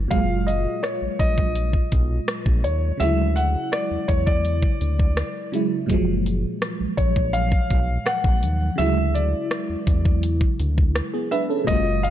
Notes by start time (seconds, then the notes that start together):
0.08 F#1 A#2 F#3 F5, kick, closed hi-hat
0.12 G#3 F4
0.47 D#5, closed hi-hat
0.83 C#5, cross-stick, closed hi-hat
1.02 A#1
1.19 A#1 D#5, kick, closed hi-hat
1.38 kick
1.55 closed hi-hat
1.73 kick
1.92 B1, kick, closed hi-hat
2.28 cross-stick, closed hi-hat
2.46 A#1, kick
2.64 D#2 C#5, closed hi-hat
2.98 D2 C#3 F#3 E5, closed hi-hat
3.02 G#3 E4
3.36 F#5, closed hi-hat
3.72 D5, cross-stick, closed hi-hat
3.91 E2
4.08 E2 C#5, kick, closed hi-hat
4.26 D5, kick
4.45 closed hi-hat
4.63 kick
4.81 D2, closed hi-hat
4.99 kick
5.17 cross-stick, closed hi-hat
5.52 C#3 F#3 G#3 E4, closed hi-hat
5.86 F#1 A#2 F#3, kick, closed hi-hat
5.91 F3 G#3
6.26 closed hi-hat
6.62 cross-stick, closed hi-hat
6.80 A#1
6.97 A#1 C#5, kick, closed hi-hat
7.16 kick
7.33 F5, closed hi-hat
7.52 kick
7.70 B1, kick, closed hi-hat
8.06 F#5, cross-stick, closed hi-hat
8.24 A#1, kick
8.43 D#2, closed hi-hat
8.76 D2 C#3 F#3 E5, closed hi-hat
8.80 G#3 E4
9.14 D5, closed hi-hat
9.51 cross-stick, closed hi-hat
9.69 E2
9.87 E2, kick, closed hi-hat
10.05 kick
10.23 closed hi-hat
10.41 kick
10.60 D2, closed hi-hat
10.78 kick
10.95 cross-stick, closed hi-hat
11.14 B3 G#4
11.31 D4 B4 E5, closed hi-hat
11.50 C#4 A4
11.64 F#1 A#2 F#3 D#5, kick, closed hi-hat
11.69 G#3 F4
12.03 F5, closed hi-hat